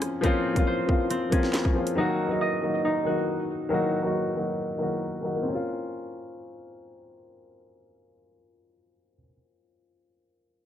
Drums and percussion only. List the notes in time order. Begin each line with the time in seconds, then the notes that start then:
0.02 cross-stick, closed hi-hat
0.24 kick, closed hi-hat
0.56 kick, closed hi-hat
0.89 kick
1.11 closed hi-hat
1.32 kick, closed hi-hat
1.43 snare
1.53 snare, clap, closed hi-hat
1.65 kick
1.87 closed hi-hat